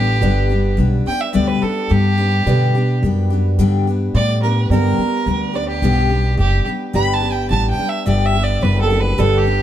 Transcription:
Already playing: upright bass A1, steel-string acoustic guitar G3 B3 D4 G4, pedal steel guitar B3 G4 D5, grand piano G4 B4 D5, fiddle G4
0.21 upright bass G1, steel-string acoustic guitar G2 D3 G3 B3 D4 G4, grand piano G4 B4 D5
0.49 steel-string acoustic guitar G3 B3 D4 G4
0.77 upright bass B1, steel-string acoustic guitar G3 B3 D4 G4
1.06 steel-string acoustic guitar G3 B3 D4 G4, fiddle G5, muted upright bass stroke
1.21 fiddle E5
1.33 upright bass D2, steel-string acoustic guitar G2 D3 G3 B3 D4 G4, fiddle D5
1.47 fiddle B4
1.62 steel-string acoustic guitar G3 B3 D4 G4, fiddle A4, muted upright bass stroke
1.90 upright bass G2, steel-string acoustic guitar G3 B3 D4 G4, fiddle G4
2.18 steel-string acoustic guitar G3 B3 D4 G4
2.46 steel-string acoustic guitar G2 D3 G3 B3 D4 G4, upright bass B2, grand piano G4 B4 D5
2.75 steel-string acoustic guitar G3 B3 D4 G4
3.03 upright bass F#2, steel-string acoustic guitar G3 B3 D4 G4
3.30 steel-string acoustic guitar G3 B3 D4 G4
3.59 upright bass G2, steel-string acoustic guitar G2 D3 G3 B3 D4 G4
3.87 steel-string acoustic guitar G3 B3 D4 G4
4.14 upright bass A2, steel-string acoustic guitar G3 B3 D4, fiddle D5
4.18 steel-string acoustic guitar G4
4.42 steel-string acoustic guitar B3 D4 G4, fiddle A#4
4.46 steel-string acoustic guitar G3
4.70 upright bass G2, steel-string acoustic guitar G2 D3 G3 B3 D4, grand piano B3 G4 D5, fiddle A#4
4.74 steel-string acoustic guitar G4
4.99 steel-string acoustic guitar G3 B3 D4 G4, muted upright bass stroke
5.26 upright bass D2, steel-string acoustic guitar G3 B3 D4 G4
5.54 steel-string acoustic guitar G3 B3 D4 G4, fiddle D5
5.68 fiddle G4
5.82 upright bass B1, steel-string acoustic guitar G2 D3 G3 B3 D4 G4
6.09 steel-string acoustic guitar G3 B3 D4 G4
6.38 upright bass F#1, steel-string acoustic guitar G3 B3 D4 G4, fiddle G4
6.66 steel-string acoustic guitar G3 B3 D4 G4, muted upright bass stroke
6.93 upright bass G1, steel-string acoustic guitar G2 D3 G3 B3 D4 G4, grand piano G4 B4 D5, fiddle B5
7.13 fiddle A5
7.22 steel-string acoustic guitar G3 B3 D4 G4
7.32 fiddle G5
7.49 upright bass A1, steel-string acoustic guitar G3 B3 D4 G4, fiddle A5
7.70 fiddle G5
7.77 steel-string acoustic guitar G3 B3 D4 G4, muted upright bass stroke
7.89 fiddle E5
8.06 upright bass G1, steel-string acoustic guitar G2 D3 G3 B3 D4 G4, fiddle D5
8.26 fiddle E5
8.34 steel-string acoustic guitar G3 B3 D4 G4
8.44 fiddle D5
8.61 upright bass F#1, steel-string acoustic guitar G3 B3 D4 G4, fiddle B4
8.81 fiddle A4
8.90 steel-string acoustic guitar G3 B3 D4 G4
9.00 fiddle B4
9.18 upright bass G1, steel-string acoustic guitar G2 D3 G3 B3 D4 G4, grand piano G4 B4 D5, fiddle A4
9.37 fiddle G4
9.45 steel-string acoustic guitar G3 B3 D4 G4

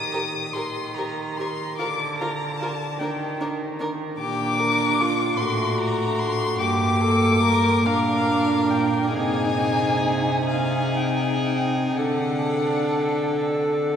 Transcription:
Already playing: cello D#3, violin D#6
0.13 viola G4, violin A#4
0.53 cello D#3, viola G4, violin A#4 C6
0.95 viola G4, violin A#4 A#5
1.37 viola G4, violin A#4 C6
1.77 cello D3, viola F4, violin A#4 D6
2.18 viola F4, violin A#4 A#5
2.58 viola F4, violin A5
2.63 violin A#4
2.98 cello D#3, viola D4, violin A#4 G5
3.41 viola D4, violin A#4
3.80 viola D4, violin A#4
4.18 cello A#2, viola D4, violin G4 D6
4.60 violin A#4
5.01 violin F4
5.37 cello A2, viola A3, violin F#4 C6
5.79 violin A#5
6.19 violin C6
6.59 cello G2, viola A#3, violin G4 D6
7.01 violin A4
7.43 violin A#4
7.86 cello A#2, viola D4, violin A#4 F5
8.70 violin G5
9.14 cello C3, viola D#4, violin G#4 G#5
10.48 viola D#4, violin G#4 F5
10.96 violin G5
11.97 cello D3, viola D4, violin A4 F#5

